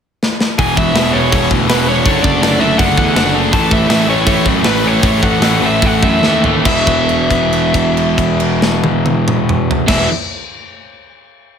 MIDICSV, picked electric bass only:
0, 0, Header, 1, 2, 480
1, 0, Start_track
1, 0, Tempo, 366524
1, 774, Time_signature, 4, 2, 24, 8
1, 5093, Tempo, 380711
1, 7013, Tempo, 414651
1, 8453, Tempo, 436047
1, 13881, End_track
2, 0, Start_track
2, 0, Title_t, "Picked electric bass"
2, 0, Program_c, 0, 34
2, 765, Note_on_c, 0, 28, 100
2, 992, Note_off_c, 0, 28, 0
2, 1007, Note_on_c, 0, 28, 85
2, 1226, Note_off_c, 0, 28, 0
2, 1234, Note_on_c, 0, 28, 95
2, 1466, Note_off_c, 0, 28, 0
2, 1487, Note_on_c, 0, 28, 94
2, 1712, Note_off_c, 0, 28, 0
2, 1736, Note_on_c, 0, 28, 101
2, 1957, Note_off_c, 0, 28, 0
2, 1974, Note_on_c, 0, 38, 85
2, 2179, Note_off_c, 0, 38, 0
2, 2187, Note_on_c, 0, 28, 94
2, 2644, Note_off_c, 0, 28, 0
2, 2689, Note_on_c, 0, 30, 95
2, 2913, Note_off_c, 0, 30, 0
2, 2933, Note_on_c, 0, 30, 96
2, 3155, Note_off_c, 0, 30, 0
2, 3170, Note_on_c, 0, 30, 85
2, 3393, Note_off_c, 0, 30, 0
2, 3421, Note_on_c, 0, 30, 92
2, 3639, Note_off_c, 0, 30, 0
2, 3648, Note_on_c, 0, 30, 100
2, 3872, Note_off_c, 0, 30, 0
2, 3892, Note_on_c, 0, 40, 78
2, 4114, Note_off_c, 0, 40, 0
2, 4141, Note_on_c, 0, 30, 91
2, 4581, Note_off_c, 0, 30, 0
2, 4620, Note_on_c, 0, 33, 92
2, 4839, Note_off_c, 0, 33, 0
2, 4863, Note_on_c, 0, 33, 95
2, 5081, Note_off_c, 0, 33, 0
2, 5087, Note_on_c, 0, 33, 96
2, 5306, Note_off_c, 0, 33, 0
2, 5319, Note_on_c, 0, 33, 93
2, 5540, Note_off_c, 0, 33, 0
2, 5562, Note_on_c, 0, 33, 92
2, 5781, Note_off_c, 0, 33, 0
2, 5811, Note_on_c, 0, 42, 86
2, 6026, Note_off_c, 0, 42, 0
2, 6037, Note_on_c, 0, 33, 89
2, 6485, Note_off_c, 0, 33, 0
2, 6530, Note_on_c, 0, 33, 103
2, 6753, Note_off_c, 0, 33, 0
2, 6775, Note_on_c, 0, 33, 92
2, 6993, Note_off_c, 0, 33, 0
2, 7000, Note_on_c, 0, 33, 86
2, 7222, Note_off_c, 0, 33, 0
2, 7235, Note_on_c, 0, 33, 95
2, 7457, Note_off_c, 0, 33, 0
2, 7491, Note_on_c, 0, 33, 98
2, 7706, Note_off_c, 0, 33, 0
2, 7722, Note_on_c, 0, 42, 92
2, 7934, Note_off_c, 0, 42, 0
2, 7941, Note_on_c, 0, 39, 92
2, 8408, Note_off_c, 0, 39, 0
2, 8443, Note_on_c, 0, 28, 95
2, 11898, Note_off_c, 0, 28, 0
2, 12005, Note_on_c, 0, 28, 90
2, 12206, Note_off_c, 0, 28, 0
2, 13881, End_track
0, 0, End_of_file